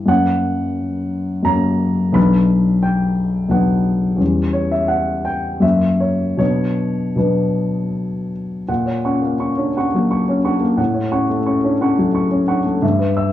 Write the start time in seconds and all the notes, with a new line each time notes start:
Already playing: B3 E4
0.06 F#2 F#3 A#3 C#4 F#5
1.43 F#2 F#3 A#3 C#4 A#5
2.13 B1 F#3 B3 D4 B5
2.83 G5
3.49 B1 F#3 B3 D4 F#5
4.17 E2 G3 C#4
4.53 C#5
4.72 E5
4.88 F#5
5.25 G5
5.60 F#2 F#3 A#3 C#4 E5
6.00 C#5
6.37 B2 F#3 B3 D4 C#5
7.16 B2 F#3 B3 D4 B4
8.68 A#2 F#5
8.86 C#5
9.05 C#4 F#5 C#6
9.22 A#3
9.40 C#4 C#6
9.58 D4 C#5
9.77 C#4 F#5 C#6
9.94 F#3 A#3
10.11 C#6
10.29 C#4 C#5
10.45 D4 F#5 C#6
10.61 A#3
10.77 A2 F#5
10.94 C#5
11.12 C#4 F#5 C#6
11.29 A3
11.46 C#4 C#6
11.64 D4 C#5
11.81 C#4 F#5 C#6
11.98 F#3 A3
12.15 C#6
12.31 C#4 C#5
12.48 D4 F#5 C#6
12.65 A3
12.82 G2 E5
12.99 B4
13.17 E5 E6